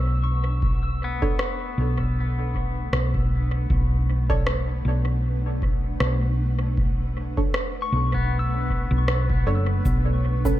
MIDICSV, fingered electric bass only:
0, 0, Header, 1, 2, 480
1, 0, Start_track
1, 0, Key_signature, 2, "minor"
1, 0, Tempo, 769231
1, 389, Time_signature, 4, 2, 24, 8
1, 6611, End_track
2, 0, Start_track
2, 0, Title_t, "Fingered electric bass"
2, 0, Program_c, 0, 33
2, 0, Note_on_c, 0, 35, 91
2, 848, Note_off_c, 0, 35, 0
2, 1109, Note_on_c, 0, 35, 74
2, 1808, Note_off_c, 0, 35, 0
2, 1827, Note_on_c, 0, 35, 91
2, 2287, Note_off_c, 0, 35, 0
2, 2309, Note_on_c, 0, 35, 90
2, 3008, Note_off_c, 0, 35, 0
2, 3026, Note_on_c, 0, 35, 78
2, 3727, Note_off_c, 0, 35, 0
2, 3746, Note_on_c, 0, 35, 90
2, 4687, Note_off_c, 0, 35, 0
2, 4945, Note_on_c, 0, 35, 75
2, 5554, Note_off_c, 0, 35, 0
2, 5558, Note_on_c, 0, 35, 95
2, 5886, Note_off_c, 0, 35, 0
2, 5906, Note_on_c, 0, 30, 76
2, 6121, Note_off_c, 0, 30, 0
2, 6148, Note_on_c, 0, 35, 91
2, 6611, Note_off_c, 0, 35, 0
2, 6611, End_track
0, 0, End_of_file